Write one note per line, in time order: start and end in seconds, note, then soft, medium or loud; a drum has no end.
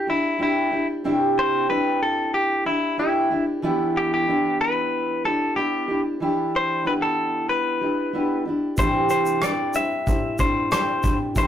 0.07 0.39 D4 soft
0.07 0.38 E4 soft
0.07 0.41 E4 medium
0.07 0.40 G4 soft
0.38 0.72 C4 medium
0.38 0.71 D4 medium
0.38 0.72 E4 medium
0.38 0.70 G4 medium
0.43 0.87 E4 medium
0.71 1.04 D4 soft
0.71 1.04 E4 soft
0.71 1.04 G4 soft
1.04 1.69 C3 medium
1.04 1.68 C4 medium
1.04 1.71 D4 medium
1.04 1.70 E4 medium
1.04 1.72 G4 medium
1.39 1.69 C5 medium
1.69 2.66 C4 medium
1.69 2.67 D4 medium
1.69 2.68 E4 medium
1.69 2.65 G4 medium
1.69 2.02 B4 medium
2.03 2.32 A4 medium
2.34 2.66 G4 medium
2.65 2.98 D4 soft
2.65 2.96 E4 medium
2.65 2.98 E4 soft
2.65 2.98 G4 soft
2.98 3.30 C4 medium
2.98 3.30 D4 medium
2.98 3.31 E4 medium
2.98 3.44 E4 medium
2.98 3.29 G4 medium
3.30 3.63 D4 soft
3.30 3.62 E4 soft
3.30 3.63 G4 medium
3.62 4.32 E3 medium
3.62 4.26 B3 medium
3.62 4.29 D4 medium
3.62 4.28 E4 medium
3.62 4.30 G4 medium
3.97 4.11 G4 medium
4.14 4.58 G4 medium
4.27 5.24 B3 soft
4.27 5.25 D4 medium
4.27 5.27 E4 medium
4.27 5.24 G4 medium
4.61 5.25 B4 medium
5.24 5.57 D4 soft
5.24 5.56 E4 soft
5.24 5.56 G4 soft
5.24 5.55 A4 medium
5.56 5.88 B3 medium
5.56 5.88 D4 medium
5.56 5.89 E4 medium
5.56 6.01 G4 medium
5.56 5.87 G4 medium
5.88 6.21 D4 soft
5.88 6.21 E4 soft
5.88 6.20 G4 soft
6.20 6.89 E3 medium
6.20 6.86 D4 medium
6.20 6.85 E4 medium
6.20 6.87 G4 medium
6.56 6.85 C5 medium
6.84 7.81 B3 soft
6.84 7.82 D4 medium
6.84 7.84 E4 medium
6.84 7.81 G4 medium
6.84 6.92 B4 medium
7.02 7.47 A4 medium
7.49 8.42 B4 medium
7.81 8.14 D4 soft
7.81 8.13 E4 soft
7.81 8.14 G4 soft
8.13 8.46 B3 soft
8.13 8.46 D4 medium
8.13 8.46 E4 medium
8.13 8.44 G4 medium
8.45 8.78 D4 soft
8.45 8.78 E4 soft
8.45 8.78 G4 medium
8.77 9.43 C3 medium
8.77 9.47 E3 medium
8.77 9.54 G3 medium
8.77 9.41 C4 medium
8.77 9.54 D4 medium
8.77 9.44 D4 medium
8.77 9.43 E4 medium
8.77 9.54 E4 medium
8.77 9.44 G4 medium
8.77 9.09 C5 medium
8.77 9.55 C5 medium
8.77 kick medium
8.77 shaker medium
9.10 9.41 C5 medium
9.10 shaker soft
9.26 shaker soft
9.42 10.39 C4 medium
9.42 10.39 D4 medium
9.42 10.41 E4 medium
9.42 10.38 G4 medium
9.42 9.73 D5 medium
9.42 cross-stick medium
9.42 shaker medium
9.74 10.00 G3 medium
9.74 10.00 D4 soft
9.74 10.01 E4 medium
9.74 10.01 C5 medium
9.74 10.40 E5 loud
9.74 shaker soft
10.06 11.07 G3 medium
10.06 11.08 D4 medium
10.06 11.08 E4 medium
10.06 11.09 C5 medium
10.06 kick medium
10.06 shaker medium
10.38 10.70 C4 soft
10.38 10.71 D4 soft
10.38 10.71 E4 soft
10.38 10.71 G4 soft
10.38 10.70 C5 medium
10.38 kick medium
10.38 shaker soft
10.71 11.03 C4 medium
10.71 11.03 D4 medium
10.71 11.04 E4 medium
10.71 11.02 G4 medium
10.71 11.17 C5 medium
10.71 cross-stick loud
10.71 shaker medium
11.03 11.35 C4 soft
11.03 11.36 D4 soft
11.03 11.36 E4 soft
11.03 11.36 G4 soft
11.03 kick medium
11.03 shaker soft
11.35 11.47 C3 medium
11.35 11.47 E3 medium
11.35 11.47 G3 medium
11.35 11.47 C4 medium
11.35 11.47 D4 medium
11.35 11.47 E4 medium
11.35 11.47 G4 medium
11.35 11.47 C5 medium
11.35 kick medium
11.35 shaker medium